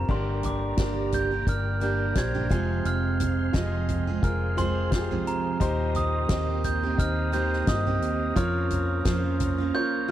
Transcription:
Already playing: G2 C4 F4 G4 A#4 A#5
0.08 G1 G2 D3 G3 A#3 D4 G4 A#4 D5 A#5 C6, kick, crash
0.43 D6, closed hi-hat, floor tom
0.77 G1 G2 D3 G3 A#3 D4 G4 A#4, kick, snare, closed hi-hat
1.12 G6, closed hi-hat, floor tom
1.31 G3 A#3 D4 G4
1.47 G1 D4 G4 A#4 F6, kick, closed hi-hat
1.80 G3 A#3 D4 G4 A#4 G6, closed hi-hat
2.15 A#1 D4 G4 C5 G#6, kick, snare, closed hi-hat
2.35 G2 D3 G3 A#3 D4 G4, floor tom
2.49 F1 F2 C3 F3 G#3 C4 F4 G#4 C5 F5 C6, kick, closed hi-hat
2.85 F1 F6, closed hi-hat
3.20 closed hi-hat, floor tom
3.53 F1 F2 C3 F3 G#3 C4 F4 G#4 D#5, kick, snare, closed hi-hat
3.89 closed hi-hat, floor tom
4.07 F3 G#3 C4 G#4
4.22 F1 F4 G#4 A#4 F6, kick, closed hi-hat
4.57 F3 G#3 C4 F4 G#4 C5 C6, closed hi-hat, floor tom
4.91 F4 G4 C5, kick, snare, closed hi-hat
4.98 G#4
5.11 F2 C3 F3 G#3 C4 G#4, floor tom
5.27 A#5, closed hi-hat
5.60 D#2 A#2 D#3 A#3 C4 D#4 G4 C5 D#5 A#5 C6, kick, closed hi-hat
5.95 D#6, closed hi-hat, floor tom
6.29 D#2 D#3 A#3 C4 D#4 G4 D#5, kick, snare, closed hi-hat
6.64 G6, closed hi-hat, floor tom
6.83 A#3 C4 G4
6.98 D#2 D#4 G4 C5 F6, kick, closed hi-hat
7.32 D#3 A#3 C4 D#4 G4 C5 G6, closed hi-hat
7.53 snare
7.67 G2 D#4 G4 D#5 D#6, kick, snare, closed hi-hat
7.87 D#3 A#3 C4 G4, floor tom
8.02 D#2, closed hi-hat
8.36 F2 F3 A#3 C#4 F4 A#4 C#5 F6, kick, closed hi-hat
8.70 closed hi-hat, floor tom
9.05 F2 F3 A#3 C#4 F4 A#4 C5, kick, snare, closed hi-hat
9.40 closed hi-hat, floor tom
9.58 A#3 C#4 F4
9.74 F4 A#4 C#5 G6

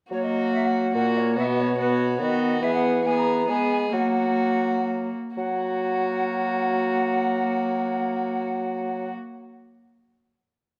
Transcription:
0.11 F#3 A#3 F#4 C#5
0.22 D#5
0.53 E5
0.65 F#5
0.94 A#2 A#3 F#4 F#5
1.17 C#5
1.36 B2 B3 F#4 E5
1.43 D#5
1.60 C#5
1.78 B3 F#4 B4
1.90 C#5
2.19 D#3 B3 F#4 D#5
2.62 E3 B3 G#4 E5
2.74 F#5
3.05 B3 G#4 G#5
3.17 A#5
3.48 G#3 B3 G#4 G#5
3.72 G#5
3.93 F#3 A#3 F#4 F#5
5.36 F#3 A#3 F#4 F#5

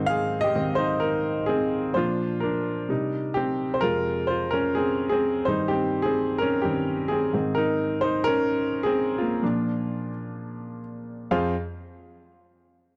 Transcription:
Already playing: G#2 D#3 C4 D#4 C5
0.06 G#4 F5
0.41 G4 D#5
0.55 G#2 D#3 C4
0.75 D#4 C5
1.00 D#4 A#4
1.46 C4 G#4
1.94 A#2 F3 D4 F4 C5
2.40 D4 A#4
2.89 C3 G3 D#4
3.34 C4 G4
3.74 C5
3.81 F2 C3 G#3 F4 A#4
4.27 F4 C5
4.51 C#4 A#4
4.75 C4 G#4
5.09 C4 G#4
5.45 G2 D#3 G3 D#4 C5
5.68 C4 G4
6.02 C4 G#4
6.38 C#4 A#4
6.62 G2 D#3 G3 C4 G4
7.08 C4 G#4
7.33 G#2 D#3 C4
7.55 D#4 A#4
8.01 D#4 C5
8.24 C#4 A#4
8.83 C4 G#4
9.18 A#3 F4
9.42 A#2 F3 D4
11.31 F2 F4 G#4 C5 F5

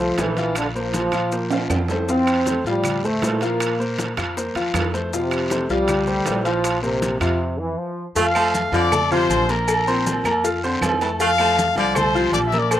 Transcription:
Already playing: C2 F3
0.00 A3 A4 C5, maracas
0.17 A#1 E3 A3 A4 C5, high bongo, low bongo, high timbale, low timbale, short guiro, maracas
0.37 F3 F4 F5, high timbale, short guiro, maracas
0.55 D3, high bongo, high conga, high timbale, long guiro, claves, maracas
0.75 F3 A#3 A#4 C5, high conga, maracas
0.94 high bongo, high conga, high timbale, low timbale, short guiro, maracas
1.12 A#2 F3 F4 F5, high bongo, high timbale, short guiro, claves, maracas
1.32 A#3 A#4 C5, high bongo, long guiro, maracas
1.51 F3 F4 F5, high bongo, high conga, high timbale, maracas
1.69 F2, high bongo, low bongo, high conga, high timbale, short guiro, claves, maracas
1.88 A3 A4 C5, high bongo, low timbale, short guiro, maracas
2.08 F3 C4 F4 F5, high bongo, high conga, long guiro, maracas
2.27 high conga, high timbale, claves, maracas
2.46 A3 A4 C5, high bongo, high conga, high timbale, low timbale, short guiro, maracas
2.64 A2 F3 G3 F4 F5, short guiro, maracas
2.84 high bongo, high conga, low conga, high timbale, long guiro, claves, maracas
3.03 A3 A4 C5, high conga, low conga, maracas
3.22 A#2 A3 A4 C5, high bongo, low bongo, high conga, high timbale, low timbale, short guiro, maracas
3.41 F3 A#3 F4 F5, high timbale, short guiro, maracas
3.60 high bongo, high conga, high timbale, long guiro, claves, maracas
3.80 A#3 A#4 C5, high conga, maracas
3.98 high bongo, high conga, high timbale, low timbale, short guiro, maracas
4.17 F2 F3 F4 F5, high bongo, high timbale, short guiro, claves, maracas
4.37 A#3 A#4 C5, high bongo, high conga, long guiro, maracas
4.55 E2 F3 F4 F5, high bongo, high conga, high timbale, maracas
4.74 F2, high bongo, low bongo, high conga, high timbale, low timbale, short guiro, claves, maracas
4.93 A3 A4 C5, high bongo, short guiro, maracas
5.12 C3 F3 F4 F5, high bongo, high conga, long guiro, maracas
5.31 high conga, high timbale, claves, maracas
5.50 A3 A4 C5, high bongo, high conga, high timbale, low timbale, short guiro, maracas
5.69 C2 F3 G3 F4 F5, short guiro, maracas
5.88 high bongo, high conga, low conga, high timbale, long guiro, claves, maracas
6.07 A3 A4 C5, high conga, low conga, maracas
6.26 A#1 A3 A4 C5, high bongo, low bongo, high conga, high timbale, low timbale, short guiro, maracas
6.44 F3 F4 F5, high timbale, short guiro, maracas
6.64 high bongo, high timbale, long guiro, claves, maracas
6.82 C3 A#3 A#4 C5, high conga, maracas
7.02 high bongo, high conga, high timbale, low timbale, short guiro, maracas
7.20 F2 C3 F3 F4 F5, high bongo, high timbale, short guiro, claves, maracas
7.59 E3
7.78 F3
8.15 F2 F3 A3 F4 F5, cowbell, high conga, low agogo, long guiro, maracas
8.35 F3 A3 A4 A5, high conga, low agogo, claves, maracas
8.54 cowbell, high conga, short guiro, maracas
8.72 F2 D3 F3 F4 D5 F5 D6, high conga, low agogo, short guiro, maracas
8.92 A3 A4 A5, cowbell, high conga, low conga, low agogo, long guiro, claves, maracas
9.11 C3 F3 F4 C5 F5 C6, high conga, low conga, maracas
9.29 A#1, cowbell, high conga, low agogo, short guiro, maracas
9.49 A#3 A#4 A#5, cowbell, low agogo, short guiro, maracas
9.68 cowbell, high conga, low agogo, long guiro, claves, maracas
9.87 A#2 C4 C5 C6, high conga, maracas
10.06 cowbell, high conga, low agogo, short guiro, maracas
10.24 F2 A#3 A#4 A#5, cowbell, high conga, low agogo, short guiro, claves, maracas
10.44 F4 F5 F6, cowbell, high conga, long guiro, maracas
10.64 D3 C4 C5 C6, high conga, maracas
10.81 F2, cowbell, high conga, low timbale, low agogo, short guiro, claves, maracas
11.01 E3 A3 A4 A5, cowbell, low agogo, short guiro, maracas
11.20 F3 A3 F4 F5, cowbell, high conga, low agogo, long guiro, maracas
11.38 F3 A3 A4 A5, high conga, low agogo, claves, maracas
11.58 cowbell, high conga, short guiro, maracas
11.76 C2 D3 F3 F4 D5 F5 D6, high conga, low agogo, short guiro, maracas
11.95 A3 A4 C5 A5 C6, cowbell, high conga, low conga, low agogo, long guiro, claves, maracas
12.15 C3 F3 F4 F5, high conga, maracas
12.32 A#1 D5 D6, cowbell, high conga, low agogo, short guiro, maracas
12.46 E5 E6
12.52 A#3 A#4 A#5, cowbell, high conga, low agogo, short guiro, maracas
12.58 D5 D6
12.71 C5 C6, cowbell, high conga, low agogo, long guiro, claves, maracas

